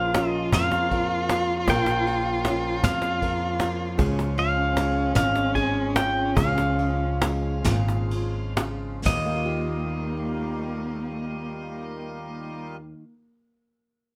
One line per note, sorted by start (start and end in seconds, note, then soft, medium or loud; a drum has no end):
0.00 0.50 A#1 loud
0.00 0.53 A#2 medium
0.00 3.95 C#3 medium
0.00 2.89 F3 medium
0.00 9.02 F3 medium
0.00 3.96 A#3 medium
0.00 0.15 C#4 medium
0.00 1.31 F4 medium
0.00 4.01 F4 loud
0.00 9.02 F4 medium
0.00 0.91 A#4 medium
0.00 0.30 F5 medium
0.14 2.46 C#4 medium
0.14 cajon slap loud
0.14 ride soft
0.30 0.49 D#5 medium
0.52 1.65 F2 medium
0.52 1.69 F5 medium
0.52 muted nylon-string guitar stroke medium
0.52 cajon bass loud
0.52 snare medium
0.52 ride medium
0.71 cajon slap medium
0.91 1.65 A#4 medium
0.91 kick medium
0.91 ride medium
1.29 2.08 F4 medium
1.29 cajon slap medium
1.29 ride medium
1.68 2.80 A#1 loud
1.68 2.83 A#2 medium
1.68 3.21 A#4 medium
1.68 2.84 G5 loud
1.68 cajon bass loud
1.68 kick medium
1.68 cajon slap soft
1.68 ride medium
1.86 cajon slap medium
2.06 3.60 F4 medium
2.06 cajon slap soft
2.06 ride medium
2.45 4.76 C#4 medium
2.45 cajon slap medium
2.45 ride medium
2.83 3.95 F2 loud
2.83 3.67 F5 medium
2.83 muted nylon-string guitar stroke medium
2.83 cajon bass loud
2.83 snare medium
2.83 ride medium
3.02 cajon slap medium
3.22 3.95 A#4 medium
3.22 kick medium
3.22 ride medium
3.60 4.37 F4 medium
3.60 cajon slap medium
3.60 ride medium
3.98 5.12 C#2 loud
3.98 5.15 C#3 medium
3.98 9.02 C#3 medium
3.98 9.02 G#3 medium
3.98 8.57 C#4 loud
3.98 5.54 G#4 medium
3.98 cajon bass medium
3.98 kick loud
3.98 cajon slap soft
3.98 ride medium
4.19 cajon slap medium
4.37 5.95 F4 medium
4.37 5.15 F5 medium
4.37 cajon slap soft
4.37 ride medium
4.76 7.21 G#3 medium
4.76 cajon slap medium
4.76 ride medium
5.15 6.33 G#1 medium
5.15 5.53 F5 loud
5.15 muted nylon-string guitar stroke medium
5.15 cajon bass loud
5.15 snare medium
5.15 ride medium
5.35 cajon slap medium
5.55 6.32 G#4 medium
5.55 5.96 G#5 loud
5.55 kick medium
5.55 ride medium
5.95 6.79 F4 medium
5.95 6.38 G5 loud
5.95 cajon slap loud
5.95 ride medium
6.36 7.62 C#2 loud
6.36 7.64 C#3 medium
6.36 9.00 G#4 medium
6.36 8.53 F5 medium
6.36 cajon bass loud
6.36 kick medium
6.36 ride medium
6.58 cajon slap medium
6.78 9.00 F4 medium
6.78 cajon slap soft
6.78 ride soft
7.21 9.06 G#3 medium
7.21 cajon slap loud
7.21 ride medium
7.64 9.02 G#1 loud
7.64 8.10 A#2 medium
7.64 cajon bass loud
7.64 snare medium
7.64 cajon slap soft
7.64 ride medium
7.88 cajon slap medium
8.11 ride medium
8.56 9.05 C#3 medium
8.56 cajon slap loud
8.56 ride medium
9.05 12.89 D#2 medium
9.05 12.93 D#2 medium
9.05 12.76 D#3 medium
9.05 12.76 G3 medium
9.05 12.76 A#3 medium
9.05 12.76 F4 medium
9.05 12.76 D#5 medium
9.05 kick medium
9.05 cajon bass medium
9.05 snare medium
9.05 crash medium
9.16 13.03 D#3 medium
9.26 13.13 A#3 medium
9.35 13.22 F4 medium
9.46 13.33 G4 medium